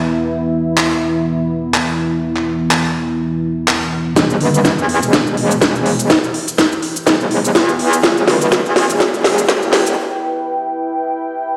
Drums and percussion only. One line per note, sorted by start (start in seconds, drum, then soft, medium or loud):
0.77 clap loud
1.74 clap loud
2.36 clap soft
2.71 clap loud
3.68 clap loud
4.16 kick loud
4.16 snare soft
4.16 closed hi-hat medium
4.16 cabasa medium
4.30 cabasa soft
4.41 open hi-hat loud
4.54 closed hi-hat soft
4.54 cabasa medium
4.65 kick loud
4.65 snare soft
4.65 closed hi-hat medium
4.65 cabasa medium
4.79 cabasa soft
4.89 open hi-hat loud
5.03 closed hi-hat medium
5.03 cabasa medium
5.13 kick loud
5.13 snare medium
5.13 closed hi-hat medium
5.13 cabasa medium
5.27 cabasa soft
5.37 open hi-hat loud
5.51 closed hi-hat medium
5.51 cabasa medium
5.62 kick loud
5.62 snare medium
5.62 closed hi-hat medium
5.62 cabasa medium
5.75 cabasa soft
5.86 open hi-hat loud
5.99 closed hi-hat medium
5.99 cabasa medium
6.10 kick loud
6.10 snare medium
6.10 closed hi-hat medium
6.10 cabasa medium
6.24 cabasa soft
6.34 open hi-hat loud
6.48 closed hi-hat soft
6.48 cabasa medium
6.58 kick loud
6.58 snare medium
6.58 closed hi-hat medium
6.58 cabasa medium
6.72 cabasa soft
6.82 open hi-hat loud
6.96 closed hi-hat medium
6.96 cabasa medium
7.07 kick loud
7.07 snare medium
7.07 closed hi-hat medium
7.07 cabasa medium
7.21 cabasa soft
7.31 open hi-hat loud
7.45 closed hi-hat medium
7.45 cabasa medium
7.55 kick loud
7.55 snare medium
7.55 closed hi-hat medium
7.55 cabasa medium
7.69 cabasa soft
7.79 open hi-hat loud
7.93 closed hi-hat medium
7.93 cabasa medium
8.03 kick loud
8.03 snare medium
8.03 closed hi-hat medium
8.03 cabasa medium
8.17 cabasa soft
8.28 snare medium
8.28 open hi-hat loud
8.41 closed hi-hat soft
8.41 cabasa medium
8.52 kick loud
8.52 snare medium
8.52 closed hi-hat medium
8.52 cabasa medium
8.66 cabasa soft
8.76 snare medium
8.76 open hi-hat loud
8.90 closed hi-hat medium
8.90 cabasa medium
9.00 kick loud
9.00 snare medium
9.00 closed hi-hat medium
9.00 cabasa medium
9.14 cabasa soft
9.24 snare medium
9.24 open hi-hat loud
9.38 closed hi-hat soft
9.38 cabasa medium
9.49 kick loud
9.49 snare medium
9.49 closed hi-hat medium
9.49 cabasa medium
9.62 cabasa soft
9.73 snare medium
9.73 open hi-hat loud
9.86 closed hi-hat medium
9.86 cabasa medium